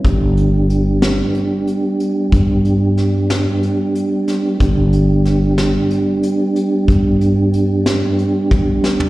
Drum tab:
HH |x-x-x-x-x-x-x-|x-x-x-x-x-x-x-|x-x-x-x-x-x-x-|x-x-x-x-x-----|
SD |------o-------|----o-o-----o-|----o-o-------|------o-----o-|
T1 |--------------|--------------|--------------|----------o---|
FT |--------------|--------------|--------------|-------------o|
BD |o-------------|o-------------|o-------------|o---------o---|